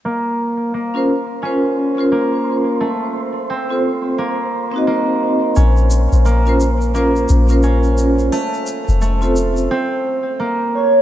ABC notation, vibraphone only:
X:1
M:4/4
L:1/16
Q:"Swing 16ths" 1/4=87
K:Bbm
V:1 name="Vibraphone"
z4 z [DFBc] z2 [DFBc]3 [DFBc]2 [DFBc]3 | z4 z [CF=Ac]3 z3 [CEGe]4- [CEGe] | z4 z [DFBc] z2 [DFBc]3 [DFBc]2 [DFBc]3 | z4 z [CF=Ac]3 z8 |]